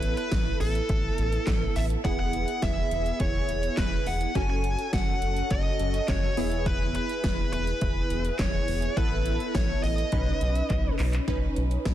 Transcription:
Already playing: A1 B3 E4 A4 B4
0.03 closed hi-hat
0.17 B4, closed hi-hat
0.32 A1, kick, snare, closed hi-hat
0.60 A1 A4, open hi-hat
0.75 closed hi-hat
0.89 A1, kick, closed hi-hat
1.18 A1, closed hi-hat
1.32 closed hi-hat
1.47 A1, kick, snare, clap, closed hi-hat
1.76 A1 E5, open hi-hat
1.90 closed hi-hat
2.05 E1 B3 E4 G#4 F#5, kick, closed hi-hat
2.19 F#5
2.33 closed hi-hat
2.48 closed hi-hat
2.62 E1 E5, kick, snare, closed hi-hat
2.91 E1, closed hi-hat
3.06 closed hi-hat
3.20 E1 C#5, kick, closed hi-hat
3.49 E1, closed hi-hat
3.63 closed hi-hat
3.77 E1 B4, kick, snare, clap, closed hi-hat
4.06 E1 F#5, open hi-hat
4.21 closed hi-hat
4.35 F#1 C#4 F#4 A4 G#5, kick, closed hi-hat
4.50 G#5
4.64 closed hi-hat
4.79 closed hi-hat
4.93 F#1 F#5, kick, snare, closed hi-hat
5.22 F#1, closed hi-hat
5.37 closed hi-hat
5.51 F#1 D#5, kick, closed hi-hat
5.79 F#1, closed hi-hat
5.94 closed hi-hat
6.08 F#1 C#5, kick, snare, clap, closed hi-hat
6.37 E1 B3 E4 G#4, open hi-hat
6.51 closed hi-hat
6.66 B4, kick, closed hi-hat
6.95 B4, closed hi-hat
7.09 closed hi-hat
7.24 E1, kick, snare, closed hi-hat
7.53 E1 B4, closed hi-hat
7.67 closed hi-hat
7.81 E1, kick, closed hi-hat
8.10 E1, closed hi-hat
8.25 closed hi-hat
8.39 E1 C#5, kick, snare, clap, closed hi-hat
8.68 E1, open hi-hat
8.82 closed hi-hat
8.97 A1 B3 E4 A4 B4, kick, closed hi-hat
9.26 closed hi-hat
9.40 closed hi-hat
9.55 A1 C#5, kick, snare, closed hi-hat
9.83 A1 D#5, open hi-hat
9.98 closed hi-hat
10.12 B1 C#4 D#4 B4, kick, closed hi-hat
10.41 B1, closed hi-hat
10.55 closed hi-hat
10.70 B1, kick, clap, closed hi-hat
10.99 B1, clap, open hi-hat
11.13 clap, closed hi-hat
11.28 B1 C#4 D#4 B4, kick, closed hi-hat
11.56 B1, closed hi-hat
11.71 closed hi-hat
11.85 B1, kick, snare, closed hi-hat

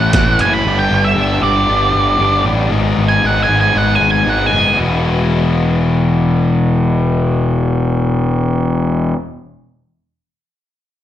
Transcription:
Already playing: A2 E3 A3 C#4 E4 F#5
0.13 A1 A2 E3 A3 C#4 E4, kick, snare, closed hi-hat
0.39 F#1 A2 E3 A3 C#4 E4 G#5, closed hi-hat
0.54 B5
0.65 G1 G2 D3 G3 B3 D4 G4
0.79 G5
0.91 G1
1.05 E5
1.16 G1 G2 D3 G3 B3 D4 G4
1.42 G1 G2 D3 G3 B3 D4 G4 D5
1.68 G1 G2 D3 G3 B3 D4 G4
1.94 G1
2.18 G1 G2 D3 G3 B3 D4 G4
2.44 A1 G2 D3 G3 B3 D4 G4
2.70 G#1 G#2 D#3 G#3 B3 D#4 G#4
2.97 G#1
3.08 G#5
3.22 G#1 G#2 D#3 G#3 B3 D#4 G#4
3.26 F#5
3.43 G#5
3.48 G#1 G#2 D#3 G#3 B3 D#4 G#4
3.61 G#5
3.73 G#1 G#2 D#3 G#3 B3 D#4 G#4 F#5
3.95 G#5
4.01 G#1
4.11 G#5
4.26 G#1 G#2 D#3 G#3 B3 D#4 G#4 F#5
4.46 G#5
4.51 F#1 G#2 D#3 G#3 B3 D#4 G#4
4.75 E1 E2 B2 E3 G#3 B3 E4

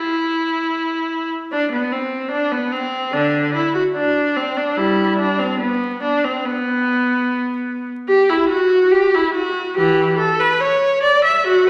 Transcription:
Already playing: E4
1.52 D4
1.72 B3
1.92 C4
2.31 D4
2.52 B3
2.71 C4
3.12 D3 D4
3.55 E4
3.75 F#4
3.95 D4
4.36 C4
4.57 D4
4.77 G3 E4
5.18 D4
5.39 C4
5.60 B3
6.03 D4
6.24 C4
6.45 B3
8.08 G4
8.29 E4
8.49 F#4
8.91 G4
9.14 E4
9.34 F#4
9.77 E3 G4
10.19 A4
10.39 B4
10.60 C#5
11.03 D5
11.25 E5
11.47 F#4

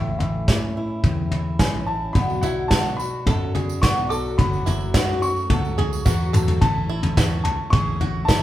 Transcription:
Already playing: A1 A2 A3 E5
0.19 A1 E3 E5, floor tom
0.48 A2 C#4, kick, snare
0.77 E4
1.04 E2 A2, kick, floor tom
1.32 E4, floor tom
1.59 A1 C#4 G#5, kick, snare
1.86 E4 A5
2.13 B1 B2 F#3 B3 D4 F#4 B5, kick, floor tom, tambourine
2.30 tambourine
2.41 B1 E4 F#5, floor tom, tambourine
2.68 B2 B3 D4 F#4 A5, kick, snare, tambourine
2.72 F#4
2.85 tambourine
2.97 D4 F#4 B5, tambourine
3.01 B3
3.26 F#2 F#3 B3 D4 F#4 A4, kick, floor tom, tambourine
3.55 B3 D4 F#4 G#4, floor tom, tambourine
3.69 tambourine
3.82 B1 B2 F#3 B3 D4 F#4 C#6, kick, snare, tambourine
3.97 tambourine
4.09 A4 D6, tambourine
4.25 tambourine
4.38 F#1 F#2 C#3 F#3 A3 C#4 F#4 B5, kick, floor tom, tambourine
4.53 tambourine
4.66 F#1 E4, floor tom, tambourine
4.81 tambourine
4.94 F#2 C#3 F#3 A3 C#4 F#4, kick, snare, tambourine
5.22 F#3 A3 C#4 F#4 C#6, tambourine
5.36 tambourine
5.50 C#2 F#3 A3 C#4 F#4 A4, kick, floor tom, tambourine
5.65 tambourine
5.78 F#3 A3 C#4 F#4 G#4, floor tom
5.93 tambourine
6.05 E2 F#2 C#3 F#3 A3 C#4 F#4, kick, snare, tambourine
6.20 tambourine
6.33 A4, mid tom, tambourine
6.48 floor tom, tambourine
6.61 A1 A2 E3 A3 C#4 E4 A5, kick, floor tom
6.89 E4
7.03 floor tom
7.17 E2 E3 A3 C#4 E4 F#4, kick, snare, tambourine
7.44 C#2 A5, floor tom
7.70 A1 E3 A3 C#4 G#4 C#6, kick, floor tom
7.74 E4
8.00 A3 C#4 E4 F#4, floor tom
8.25 A1 A3 E4 A5, kick, snare, tambourine
8.29 C#4 E4

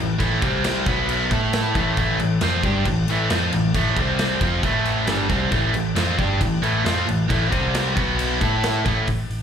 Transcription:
Already playing: A2 E3
0.00 A1
0.19 A1 A2 E3 A3, kick, crash
0.42 C2 C3 G3 C4, kick, crash
0.64 snare, crash
0.86 B1 B2 F#3 B3, kick, crash
1.09 crash
1.31 A2 A3 E4 A4, kick, crash
1.53 snare, crash
1.75 A1 A2 E3 A3, kick, crash
1.97 A1 A2 E3 A3, kick, crash
2.19 A1 A2 E3, crash
2.41 F2 F3 C4 F4, snare, crash
2.63 G2 G3 D4 G4, kick, crash
2.85 A1 A2 E3, kick, crash
3.08 A1 A2 E3 A3, crash
3.30 F2 F3 C4 F4, snare, crash
3.52 A1 A2 E3, crash
3.74 A1 A2 E3 A3, kick, crash
3.96 C2 C3 G3 C4, kick, crash
4.19 snare, crash
4.41 F2 F3 C4 F4, kick, crash
4.63 A1 A2 E3 A3, kick, crash
4.85 crash
5.07 G1 G2 D3 G3, snare, crash
5.30 C2 C3 G3 C4, kick, crash
5.51 A1 A2 E3 A3, kick, crash
5.73 A1 A2 E3, crash
5.95 F2 F3 C4 F4, snare, crash
6.18 G2 G3 D4 G4, kick, crash
6.41 A1 A2 E3, kick, crash
6.62 A1 A2 E3 A3, crash
6.85 F2 F3 C4 F4, snare, crash
7.08 A1 A2 E3, crash
7.29 A1 A2 E3 A3, kick, crash
7.51 C2 C3 G3 C4, kick, crash
7.74 snare, crash
7.95 B1 B2 F#3 B3, kick, crash
8.19 crash
8.41 A2 A3 E4 A4, kick, crash
8.63 snare, crash
8.85 A1 A2 E3 A3, kick, crash
9.08 A1, kick, open hi-hat
9.30 A1, open hi-hat

